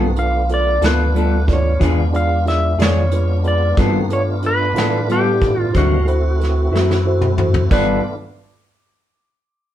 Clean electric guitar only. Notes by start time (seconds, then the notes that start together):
0.82 B3 F4 A4
1.15 G3 B3 F4 A4
1.80 E3 D4 F4 G#4
2.79 D4 F4 G#4
3.77 G3 B3 F4 A4
4.77 B3 F4 A4
5.10 G3 B3 F4 A4
5.75 D3 F#3 C4 E4
6.73 F#3 C4 E4
7.71 G3 B3 F4 A4